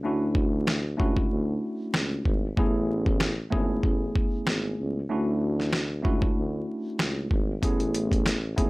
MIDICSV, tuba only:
0, 0, Header, 1, 2, 480
1, 0, Start_track
1, 0, Tempo, 631579
1, 36, Time_signature, 4, 2, 24, 8
1, 6611, End_track
2, 0, Start_track
2, 0, Title_t, "Tuba"
2, 0, Program_c, 0, 58
2, 41, Note_on_c, 0, 38, 107
2, 728, Note_off_c, 0, 38, 0
2, 760, Note_on_c, 0, 37, 93
2, 961, Note_off_c, 0, 37, 0
2, 1000, Note_on_c, 0, 38, 103
2, 1201, Note_off_c, 0, 38, 0
2, 1478, Note_on_c, 0, 37, 92
2, 1680, Note_off_c, 0, 37, 0
2, 1717, Note_on_c, 0, 32, 96
2, 1919, Note_off_c, 0, 32, 0
2, 1958, Note_on_c, 0, 33, 112
2, 2647, Note_off_c, 0, 33, 0
2, 2682, Note_on_c, 0, 32, 94
2, 2882, Note_off_c, 0, 32, 0
2, 2916, Note_on_c, 0, 33, 89
2, 3119, Note_off_c, 0, 33, 0
2, 3401, Note_on_c, 0, 32, 92
2, 3601, Note_off_c, 0, 32, 0
2, 3641, Note_on_c, 0, 37, 94
2, 3842, Note_off_c, 0, 37, 0
2, 3880, Note_on_c, 0, 38, 109
2, 4567, Note_off_c, 0, 38, 0
2, 4600, Note_on_c, 0, 37, 92
2, 4801, Note_off_c, 0, 37, 0
2, 4840, Note_on_c, 0, 38, 106
2, 5041, Note_off_c, 0, 38, 0
2, 5320, Note_on_c, 0, 37, 88
2, 5521, Note_off_c, 0, 37, 0
2, 5557, Note_on_c, 0, 32, 98
2, 5759, Note_off_c, 0, 32, 0
2, 5800, Note_on_c, 0, 33, 113
2, 6487, Note_off_c, 0, 33, 0
2, 6522, Note_on_c, 0, 32, 94
2, 6611, Note_off_c, 0, 32, 0
2, 6611, End_track
0, 0, End_of_file